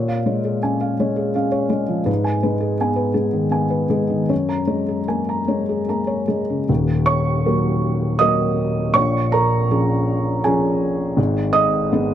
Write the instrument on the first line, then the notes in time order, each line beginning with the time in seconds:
felt piano
Already playing: A#2 C#5
0.08 F5
0.26 G#3 C#5
0.45 G#4
0.62 C#4 G#5
0.81 F5
1.00 G#3 C#5
1.16 G#4
1.35 C#4 F5
1.52 C#5
1.70 G#3 G#4
1.88 F3
2.06 G#2 B4
2.24 G#5
2.43 G#3 B4
2.61 G#4
2.81 B3 G#5
2.96 B4
3.14 G#3 G#4
3.33 D#3
3.51 B3 G#5
3.70 B4
3.90 G#3 G#4
4.10 D#3
4.29 F#2 C#5
4.49 A#5
4.67 G#3 C#5
4.88 G#4
5.08 A#3 G#5
5.29 A#5
5.48 G#3 C#5
5.69 G#4
5.89 A#3 A#5
6.07 C#5
6.28 G#3 G#4
6.50 C#3
6.69 D#1 D#2
7.06 C#5 C#6
7.46 F#3 A#3 A#4
8.19 F#3 A#3 A#4 D#5 D#6
8.94 A#1 A#2 C#5 C#6
9.32 A#4 A#5
9.70 F3 C#4 G#4
10.44 F3 C#4 G#4 G#5
11.17 G#1 G#2
11.53 D#5 D#6
11.92 G#3 B3 G#4